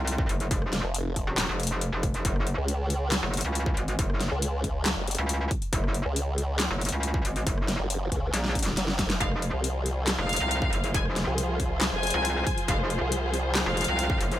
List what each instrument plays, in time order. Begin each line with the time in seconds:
Already playing: wobble bass C2
0.07 closed hi-hat
0.18 kick
0.29 wobble bass F#1, closed hi-hat
0.40 closed hi-hat
0.51 wobble bass F1, kick, closed hi-hat
0.62 cross-stick
0.73 snare, closed hi-hat
0.84 wobble bass F1
0.94 closed hi-hat
1.16 kick, closed hi-hat
1.27 wobble bass D#1
1.38 snare, clap, closed hi-hat
1.49 wobble bass F1
1.60 closed hi-hat
1.63 closed hi-hat
1.67 closed hi-hat
1.81 closed hi-hat
1.92 wobble bass F1
2.03 kick, closed hi-hat
2.14 closed hi-hat
2.25 wobble bass F#1, kick, closed hi-hat
2.36 cross-stick
2.47 closed hi-hat
2.58 wobble bass C#2
2.68 closed hi-hat
2.90 closed hi-hat
3.12 snare, clap, closed hi-hat
3.23 wobble bass F#1
3.34 closed hi-hat
3.37 closed hi-hat
3.41 wobble bass C#2, closed hi-hat
3.55 closed hi-hat
3.66 kick
3.77 wobble bass G#1, closed hi-hat
3.88 closed hi-hat
3.99 wobble bass F#1, kick, closed hi-hat
4.10 cross-stick
4.21 snare, closed hi-hat
4.32 wobble bass C#2
4.42 closed hi-hat
4.64 kick, closed hi-hat
4.86 snare, clap, closed hi-hat
4.97 wobble bass F#1
5.08 closed hi-hat
5.11 closed hi-hat
5.15 wobble bass C#2, closed hi-hat
5.29 closed hi-hat
5.51 kick, closed hi-hat
5.62 closed hi-hat
5.73 wobble bass F#1, kick, closed hi-hat
5.84 cross-stick
5.94 closed hi-hat
6.05 wobble bass C#2
6.16 closed hi-hat
6.38 closed hi-hat
6.60 snare, clap, closed hi-hat
6.71 wobble bass F#1
6.81 closed hi-hat
6.85 closed hi-hat
6.89 wobble bass C#2, closed hi-hat
7.03 closed hi-hat
7.14 kick
7.25 wobble bass G#1, closed hi-hat
7.36 closed hi-hat
7.47 wobble bass F#1, kick, closed hi-hat
7.58 cross-stick
7.68 snare, closed hi-hat
7.79 wobble bass F#1
7.90 closed hi-hat
8.12 wobble bass C#2, kick, closed hi-hat
8.34 wobble bass A#1, snare, closed hi-hat
8.45 snare
8.55 kick, closed hi-hat
8.59 closed hi-hat
8.63 snare, closed hi-hat
8.77 wobble bass F#1, snare, closed hi-hat
8.88 snare
8.99 kick, snare, closed hi-hat
9.10 snare, closed hi-hat
9.21 wobble bass F1, string section F3 F4 G#4 C5, violin section F5, kick, closed hi-hat
9.32 cross-stick
9.42 closed hi-hat
9.53 wobble bass C2
9.64 closed hi-hat
9.86 closed hi-hat
10.07 snare, clap, closed hi-hat
10.18 wobble bass F1, violin section F5
10.29 closed hi-hat
10.33 closed hi-hat
10.36 wobble bass C2, closed hi-hat
10.51 closed hi-hat
10.62 kick
10.73 wobble bass F#1, closed hi-hat
10.84 closed hi-hat
10.94 wobble bass F1, violin section G#5, kick, closed hi-hat
11.05 cross-stick
11.16 snare, closed hi-hat
11.27 wobble bass C2
11.38 closed hi-hat
11.60 kick, closed hi-hat
11.81 snare, clap, closed hi-hat
11.92 wobble bass F1, violin section G#5
12.03 closed hi-hat
12.07 closed hi-hat
12.10 wobble bass C2, closed hi-hat
12.25 closed hi-hat
12.47 kick, closed hi-hat
12.58 closed hi-hat
12.68 wobble bass F1, violin section F5, kick, closed hi-hat
12.79 cross-stick
12.90 closed hi-hat
13.01 wobble bass C2
13.12 closed hi-hat
13.34 closed hi-hat
13.55 snare, clap, closed hi-hat
13.66 wobble bass F1, violin section F5
13.77 closed hi-hat
13.81 closed hi-hat
13.84 wobble bass C2, closed hi-hat
13.99 closed hi-hat
14.10 kick
14.21 wobble bass F#1, closed hi-hat
14.32 closed hi-hat